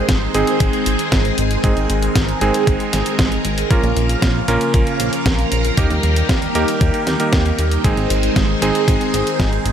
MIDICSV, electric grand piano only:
0, 0, Header, 1, 2, 480
1, 0, Start_track
1, 0, Key_signature, -4, "major"
1, 0, Tempo, 517241
1, 1520, Time_signature, 4, 2, 24, 8
1, 9023, End_track
2, 0, Start_track
2, 0, Title_t, "Electric grand piano"
2, 0, Program_c, 0, 2
2, 0, Note_on_c, 0, 56, 73
2, 0, Note_on_c, 0, 60, 70
2, 0, Note_on_c, 0, 63, 70
2, 0, Note_on_c, 0, 68, 83
2, 291, Note_off_c, 0, 60, 0
2, 292, Note_off_c, 0, 56, 0
2, 292, Note_off_c, 0, 63, 0
2, 292, Note_off_c, 0, 68, 0
2, 321, Note_on_c, 0, 56, 89
2, 321, Note_on_c, 0, 60, 85
2, 321, Note_on_c, 0, 63, 85
2, 321, Note_on_c, 0, 68, 102
2, 1492, Note_off_c, 0, 56, 0
2, 1492, Note_off_c, 0, 60, 0
2, 1492, Note_off_c, 0, 63, 0
2, 1492, Note_off_c, 0, 68, 0
2, 1520, Note_on_c, 0, 56, 75
2, 1520, Note_on_c, 0, 68, 86
2, 1521, Note_on_c, 0, 60, 70
2, 1521, Note_on_c, 0, 63, 69
2, 2211, Note_off_c, 0, 56, 0
2, 2211, Note_off_c, 0, 68, 0
2, 2212, Note_off_c, 0, 60, 0
2, 2212, Note_off_c, 0, 63, 0
2, 2240, Note_on_c, 0, 56, 93
2, 2240, Note_on_c, 0, 60, 85
2, 2240, Note_on_c, 0, 63, 82
2, 2240, Note_on_c, 0, 68, 101
2, 3411, Note_off_c, 0, 56, 0
2, 3411, Note_off_c, 0, 60, 0
2, 3411, Note_off_c, 0, 63, 0
2, 3411, Note_off_c, 0, 68, 0
2, 3440, Note_on_c, 0, 58, 78
2, 3440, Note_on_c, 0, 65, 69
2, 3440, Note_on_c, 0, 70, 84
2, 3441, Note_on_c, 0, 61, 73
2, 4132, Note_off_c, 0, 58, 0
2, 4132, Note_off_c, 0, 61, 0
2, 4132, Note_off_c, 0, 65, 0
2, 4132, Note_off_c, 0, 70, 0
2, 4159, Note_on_c, 0, 58, 94
2, 4159, Note_on_c, 0, 65, 82
2, 4159, Note_on_c, 0, 70, 100
2, 4160, Note_on_c, 0, 61, 84
2, 5331, Note_off_c, 0, 58, 0
2, 5331, Note_off_c, 0, 61, 0
2, 5331, Note_off_c, 0, 65, 0
2, 5331, Note_off_c, 0, 70, 0
2, 5360, Note_on_c, 0, 58, 77
2, 5360, Note_on_c, 0, 63, 68
2, 5360, Note_on_c, 0, 67, 66
2, 5360, Note_on_c, 0, 70, 85
2, 6051, Note_off_c, 0, 58, 0
2, 6051, Note_off_c, 0, 63, 0
2, 6051, Note_off_c, 0, 67, 0
2, 6051, Note_off_c, 0, 70, 0
2, 6081, Note_on_c, 0, 58, 90
2, 6081, Note_on_c, 0, 63, 83
2, 6081, Note_on_c, 0, 70, 97
2, 6082, Note_on_c, 0, 67, 87
2, 6657, Note_off_c, 0, 58, 0
2, 6657, Note_off_c, 0, 63, 0
2, 6657, Note_off_c, 0, 67, 0
2, 6657, Note_off_c, 0, 70, 0
2, 6681, Note_on_c, 0, 58, 77
2, 6681, Note_on_c, 0, 63, 70
2, 6681, Note_on_c, 0, 67, 71
2, 6681, Note_on_c, 0, 70, 84
2, 7252, Note_off_c, 0, 58, 0
2, 7252, Note_off_c, 0, 63, 0
2, 7252, Note_off_c, 0, 67, 0
2, 7252, Note_off_c, 0, 70, 0
2, 7281, Note_on_c, 0, 56, 77
2, 7281, Note_on_c, 0, 60, 67
2, 7281, Note_on_c, 0, 63, 70
2, 7281, Note_on_c, 0, 68, 82
2, 7972, Note_off_c, 0, 56, 0
2, 7972, Note_off_c, 0, 60, 0
2, 7972, Note_off_c, 0, 63, 0
2, 7972, Note_off_c, 0, 68, 0
2, 7999, Note_on_c, 0, 60, 80
2, 7999, Note_on_c, 0, 68, 102
2, 8000, Note_on_c, 0, 56, 87
2, 8000, Note_on_c, 0, 63, 85
2, 9023, Note_off_c, 0, 56, 0
2, 9023, Note_off_c, 0, 60, 0
2, 9023, Note_off_c, 0, 63, 0
2, 9023, Note_off_c, 0, 68, 0
2, 9023, End_track
0, 0, End_of_file